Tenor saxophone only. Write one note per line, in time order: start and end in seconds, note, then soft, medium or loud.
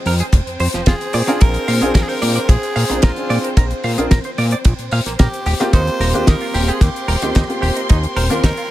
0.88 1.42 G#4 loud
1.41 1.94 A#4 loud
1.94 2.04 A#4 loud
2.02 2.10 G#4 loud
2.08 2.50 A#4 loud
2.49 3.05 G#4 loud
3.03 3.44 F4 medium
5.19 5.70 G4 medium
5.74 6.29 C5 loud
6.28 6.70 A#4 loud
6.69 6.84 G#4 medium
6.82 7.63 G4 medium
8.17 8.30 C5 loud
8.30 8.43 A#4 loud
8.44 8.71 A#4 loud